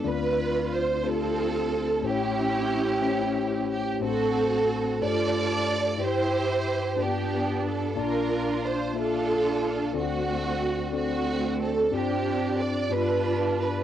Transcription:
<<
  \new Staff \with { instrumentName = "String section" } { \time 6/8 \key d \dorian \tempo 4. = 61 << { b'4 c''8 a'4. | g'2~ g'8 g'8 | a'4. d''4. | c''4. g'4 a'8 |
bes'4 c''8 a'4. | fis'4. fis'4 a'8 | g'4 d''8 b'4 b'8 | } \\ { f'4. <c' f'>4. | <cis' e'>2~ <cis' e'>8 r8 | <c' fis'>4. <f' a'>4. | <e' g'>4. <b d'>4. |
<d' f'>4. <d' f'>4. | <a c'>4. <a c'>4. | <c' d'>4. <d' f'>4. | } >> }
  \new Staff \with { instrumentName = "Tine electric piano" } { \time 6/8 \key d \dorian <a c' d' f' d''>4 r8 <a c' d' f' g' a'>4 r8 | <a cis' e' g' c'' cis''>4 r8 <a cis' e' g' c'' cis''>4 r8 | <a c' d' fis' c''>4 r8 <a d' f' g' c''>4 r8 | <e' g' b' c''>4 r8 <bes b d' f' g' d''>4 r8 |
<bes d' f' d'' a''>4 r8 <bes d' f' a' e''>4 r8 | <c' d' f' fis' a' d''>4 r8 <c' d' fis' a' d''>4 r8 | <c' d' f' g' d''>4 r8 <b d' f' g' d''>4 r8 | }
  \new Staff \with { instrumentName = "Tine electric piano" } { \clef bass \time 6/8 \key d \dorian <d, d>2. | <a,, a,>2. | <a,, a,>4. g,4. | g,4. g,4. |
<bes,, bes,>2. | <d, d>2. | g,4. g,4. | }
>>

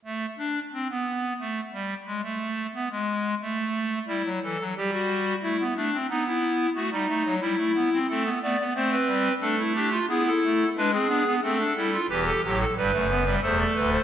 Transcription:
<<
  \new Staff \with { instrumentName = "Pipe organ" } { \time 3/4 \key a \minor \tempo 4 = 90 << { a8 d'8 c'16 b8. a8 g8 | gis16 a8. b16 gis8. a4 | r2. | r2. |
a'8 d''8 c''16 b'8. a'8 g'8 | gis'16 a'8. b'16 gis'8. a'4 | b'16 a'16 g'16 a'16 b'4 c''16 d''16 b'16 c''16 | } \\ { r2. | r2. | e'8 a'8 g'16 fis'8. e'8 d'8 | dis'16 e'8. fis'16 dis'8. e'4 |
c'16 b16 a16 b16 c'4 d'16 e'16 d'16 f'16 | e'4 d'16 c'16 d'16 b16 c'16 d'16 e'16 f'16 | g'2 a'4 | } >> }
  \new Staff \with { instrumentName = "Pipe organ" } { \clef bass \time 3/4 \key a \minor << { r2. | r2. | g16 fis16 e16 fis16 g4 a16 b16 a16 c'16 | b4 a16 g16 a16 fis16 g16 a16 b16 c'16 |
a8 b8 a8 g8 a4 | b8 a8 gis8 b8 a8 g8 | e8 fis8 g16 a16 b16 g16 a4 | } \\ { r2. | r2. | r2. | r2. |
r2. | r2. | <e,, e,>8 <a,, a,>8 <g,, g,>16 <fis,, fis,>8. <e,, e,>8 <d,, d,>8 | } >> }
>>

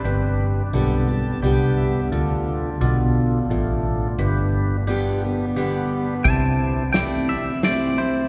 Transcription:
<<
  \new Staff \with { instrumentName = "Clean electric guitar" } { \time 3/4 \key g \mixolydian \tempo 4 = 87 b'4. r4. | r2. | r2. | a''4 g''8 e''8 d''8 c''8 | }
  \new Staff \with { instrumentName = "Tonewheel organ" } { \time 3/4 \key g \mixolydian << { r4. a''8 g''8 e''8 | r2. | r2. | r2. | } \\ { <d' g' b'>4 <d' g' a'>4 <d' g' b'>4 | <d' f' a'>4 <d' f' a'>4 <d' f' a'>4 | <d' g' b'>4 <d' g' b'>4 <d' g' b'>4 | <e' g' c''>4 <e' g' d''>4 <e' g' c''>4 | } >> }
  \new Staff \with { instrumentName = "Steel-string acoustic guitar" } { \time 3/4 \key g \mixolydian << { r4 <d g b g'>8 <b g'>8 <d g b g'>4 | r2. | r4 <d g b g'>8 <b g'>8 <d g b g'>4 | r4 <e a c' e'>8 <c' e'>8 <e a c' e'>8 <c' e'>8 | } \\ { g,2 r4 | d4 b,4 a,4 | g,2 r4 | c2 r4 | } >> }
  \new Staff \with { instrumentName = "Fingered electric bass" } { \clef bass \time 3/4 \key g \mixolydian g,,4 b,,4 c,4 | d,4 b,,4 a,,4 | g,,2. | c,2. | }
  \new DrumStaff \with { instrumentName = "Drums" } \drummode { \time 3/4 r4 r4 r4 | r4 r4 r4 | r4 r4 r4 | <hh bd>4 <hh sn>4 <hh sn>4 | }
>>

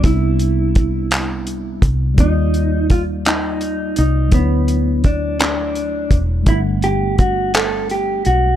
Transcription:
<<
  \new Staff \with { instrumentName = "Clean electric guitar" } { \time 6/8 \key g \major \tempo 4. = 56 e'2~ e'8 r8 | ees'4 f'8 ees'4 ees'8 | b4 d'8 d'4 r8 | e'8 g'8 fis'8 a'8 g'8 fis'8 | }
  \new Staff \with { instrumentName = "Tine electric piano" } { \time 6/8 \key g \major <g b c' d' ees' e'>2. | <g bes ees' f' d''>2. | <fis a d' e' cis''>2. | <g a b d' fis''>2. | }
  \new Staff \with { instrumentName = "Fingered electric bass" } { \clef bass \time 6/8 \key g \major c,2~ c,8 c,8 | ees,2~ ees,8 c,8 | d,2~ d,8 e,,8 | g,,2~ g,,8 b,,8 | }
  \new DrumStaff \with { instrumentName = "Drums" } \drummode { \time 6/8 <hh bd>8 hh8 <hh bd>8 <hc hh>8 hh8 <hh bd>8 | <hh bd>8 hh8 <hh bd>8 <hc hh>8 hh8 hh8 | <hh bd>8 hh8 <hh bd>8 <hc hh>8 hh8 <hh bd>8 | <hh bd>8 hh8 <hh bd>8 <hc hh>8 hh8 hh8 | }
>>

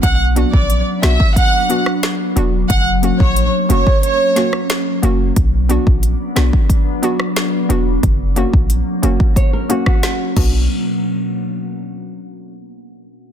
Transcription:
<<
  \new Staff \with { instrumentName = "Violin section" } { \time 4/4 \key b \minor \tempo 4 = 90 fis''16 r8 d''8 r16 e''8 fis''8. r4 r16 | fis''16 r8 cis''8 r16 cis''8 cis''8. r4 r16 | r1 | r1 |
r1 | }
  \new Staff \with { instrumentName = "Nylon-string guitar" } { \time 4/4 \key b \minor r1 | r1 | r1 | r2 cis''16 ais'16 fis'16 fis'8. r8 |
r1 | }
  \new Staff \with { instrumentName = "Synth pluck" } { \time 4/4 \key b \minor r8 <b d' fis'>8 r8 <b d' fis'>8 r8 <b d' fis'>8 r8 <b d' fis'>8 | r8 <ais cis' fis'>8 r8 <ais cis' fis'>8 r8 <ais cis' fis'>8 r8 <ais cis' fis'>8 | r8 <b d' fis'>8 r8 <b d' fis'>8 r8 <b d' fis'>8 r8 <b d' fis'>8 | r8 <ais cis' fis'>8 r8 <ais cis' fis'>8 r8 <ais cis' fis'>8 r8 <b d' fis'>8 |
r1 | }
  \new Staff \with { instrumentName = "Ambient pad" } { \time 4/4 \key b \minor << { <b d'>1 | <ais cis'>1 | <b d'>1 | <ais cis'>2.~ <ais cis'>8 r8 |
r1 | } \\ { fis1~ | fis1 | fis1 | fis2.~ fis8 r8 |
r1 | } >> }
  \new Staff \with { instrumentName = "808-style bass" } { \clef bass \time 4/4 \key b \minor b,,8. ais,,8 r16 b,,16 r4. r16 e,,8 | fis,,8. ais,,8 r16 fis,,16 r4. r16 fis,,8 | b,,8. ais,,8 r16 b,,16 r4. r16 e,,8 | fis,,8. ais,,8 r16 fis,,16 r4. r16 b,,8 |
r1 | }
  \new DrumStaff \with { instrumentName = "Drums" } \drummode { \time 4/4 <hh bd>8 hh16 bd16 hh8 <hh sn>16 bd16 <hh bd>8 hh16 ss16 <hh sn>8 hh8 | <hh bd>8 hh16 bd16 hh8 hh16 bd16 hh8 <hh sn>16 ss16 <hh sn>8 hh8 | <hh bd>8 hh16 bd16 hh8 <hh sn>16 bd16 <hh bd>8 hh16 ss16 <hh sn>8 hh8 | <hh bd>8 hh16 bd16 hh8 hh16 bd16 <hh bd>8 hh16 <bd ss>16 <hh sn>8 <cymc bd>8 |
r4 r4 r4 r4 | }
>>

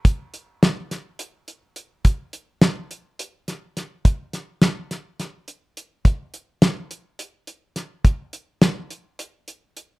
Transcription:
\new DrumStaff \with { instrumentName = "Drums" } \drummode { \time 7/8 \tempo 4 = 105 <hh bd>8 hh8 <hh sn>8 <hh sn>8 hh8 hh8 hh8 | <hh bd>8 hh8 <hh sn>8 hh8 hh8 <hh sn>8 <hh sn>8 | <hh bd>8 <hh sn>8 <hh sn>8 <hh sn>8 <hh sn>8 hh8 hh8 | <hh bd>8 hh8 <hh sn>8 hh8 hh8 hh8 <hh sn>8 |
<hh bd>8 hh8 <hh sn>8 hh8 hh8 hh8 hh8 | }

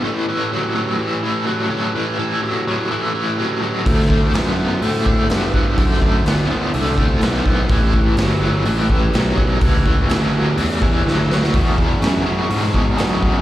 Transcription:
<<
  \new Staff \with { instrumentName = "Tonewheel organ" } { \time 4/4 \key a \mixolydian \tempo 4 = 125 <a, cis' g' b'>1~ | <a, cis' g' b'>1 | <e' fis' c''>1~ | <e' fis' c''>1 |
<cis' g' b'>1~ | <cis' g' b'>1 | <d' fis' gis'>1 | }
  \new Staff \with { instrumentName = "Overdriven electric guitar" } { \clef bass \time 4/4 \key a \mixolydian <a, e>8 <a, e>8 <a, fis>8 <a, fis>8 <a, e>8 <a, e>8 <a, fis>8 <a, fis>8 | <a, e>8 <a, e>8 <a, fis>8 <a, fis>8 <a, e>8 <a, e>8 <a, fis>8 <a, fis>8 | <d a>8 <d a>8 <d b>8 <d b>8 <d a>8 <d a>8 <d b>8 <d b>8 | <d a>8 <d a>8 <d b>8 <d b>8 <d a>8 <d a>8 <d b>8 <d b>8 |
<a, e>8 <a, e>8 <a, fis>8 <a, fis>8 <a, e>8 <a, e>8 <a, fis>8 <a, fis>8 | <a, e>8 <a, e>8 <a, fis>8 <a, fis>8 <a, e>8 <a, e>8 <a, fis>8 <a, fis>8 | <e, b,>8 <e, b,>8 <e, cis>8 <e, cis>8 <e, b,>8 <e, b,>8 <e, cis>8 <e, cis>8 | }
  \new Staff \with { instrumentName = "Fingered electric bass" } { \clef bass \time 4/4 \key a \mixolydian r1 | r1 | d,4 fis,4 a,4 g,4 | fis,4 d,8 r8 c,4 b,,4 |
a,,4 g,,4 a,,4 b,,4 | cis,4 d,4 e,4 d,4 | e,4 fis,4 gis,4 fis,4 | }
  \new DrumStaff \with { instrumentName = "Drums" } \drummode { \time 4/4 r4 r4 r4 r4 | r4 r4 r4 r4 | <hho bd>16 sn16 bd8 <hho sn>4 hho8 bd8 <hho sn>8 bd8 | <hho bd>16 sn16 bd8 <hho sn>4 hho8 bd8 <hho sn>8 bd8 |
<hho bd>8 bd8 <hho sn>4 hho8 bd8 <hho sn>8 bd8 | <hho bd>8 bd8 <hho sn>4 hho8 bd8 sn8 sn16 sn16 | <hho bd>8 bd8 <hho sn>4 hho8 bd8 <hho sn>8 bd8 | }
>>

